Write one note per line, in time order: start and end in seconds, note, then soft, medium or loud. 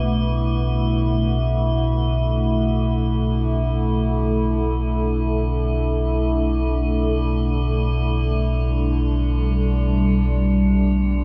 0.00 11.24 B1 medium
0.00 11.24 B2 medium
0.00 8.22 A3 medium
0.00 11.24 D4 medium
0.00 8.24 E4 medium
0.00 1.02 B4 medium
0.00 8.22 F#5 medium
0.70 11.24 A4 medium
8.22 11.24 G3 medium
8.22 11.24 D4 medium
10.47 11.24 B4 medium
10.72 11.24 G5 medium